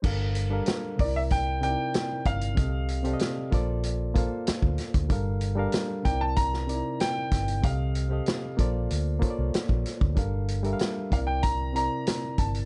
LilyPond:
<<
  \new Staff \with { instrumentName = "Grand piano" } { \time 4/4 \key c \mixolydian \tempo 4 = 95 r4. d''16 e''16 g''8 g''4 f''8~ | f''4. r2 r8 | r4. g''16 a''16 bes''4 g''4 | f''2.~ f''8 r8 |
r4. f''16 g''16 bes''8 bes''4 a''8 | }
  \new Staff \with { instrumentName = "Reed electric piano" } { \time 4/4 \key c \mixolydian <g d' a' bes' f''>8. <g d' a' bes' f''>8. <c c' ees' e' bes' d''>4 <c c' ees' e' bes' d''>4~ <c c' ees' e' bes' d''>16 r16 | <c c' g' a' ees''>8. <c c' g' a' d'' ees''>8. <bes f' a' c'' d''>4 <bes f' a' c'' f''>4~ <bes f' a' c'' f''>16 r16 | <g d' a' bes' f''>8. <g d' a' bes' f''>8. <c c' ees' e' bes' d''>4 <c c' ees' e' bes' d''>4~ <c c' ees' e' bes' d''>16 r16 | <c c' g' a' ees''>8. <c c' g' a' ees''>8. <bes f' a' c'' d''>4 <bes f' a' c'' cis'' d''>4~ <bes f' a' c'' cis'' d''>16 r16 |
<g d' a' bes' f''>8. <g d' a' bes' e'' f''>8. <c c' e' bes' d''>4 <c c' e' bes' d''>4~ <c c' e' bes' d''>16 r16 | }
  \new Staff \with { instrumentName = "Fingered electric bass" } { \clef bass \time 4/4 \key c \mixolydian g,,4 r8 c,4~ c,16 r8. g,,8 | c,4 r8 bes,,4~ bes,,16 r8 d,16 r16 d,16 | g,,4 r8 c,4~ c,16 r8. g,,8 | c,4 r8 bes,,8 d,8 r16 c,16 r16 bes,,16 r16 d,16 |
g,,4 r8 c,4~ c,16 r8. g,,8 | }
  \new DrumStaff \with { instrumentName = "Drums" } \drummode { \time 4/4 <cymc bd>8 hh8 <hh sn>8 <hho bd>8 <hh bd>8 hh8 <hh sn>8 <hh bd>16 hh16 | <hh bd>8 hh16 hh16 <hh sn>8 <hh bd>8 hh8 <hh bd>8 <hh sn>16 bd16 <hh sn>16 <hh bd>16 | <hh bd>8 hh8 <hh sn>8 <hh bd>8 <hh bd>16 sn16 hh8 <hh sn>8 <hh bd sn>16 hh16 | <hh bd>8 hh8 <hh sn>8 <hh bd>8 hh8 <hh bd>8 <hh sn>16 bd16 <hh sn>16 bd16 |
<hh bd>8 hh16 hh16 <hh sn>8 <hh bd>8 <hh bd>8 hh8 <hh sn>8 <hh bd>16 hh16 | }
>>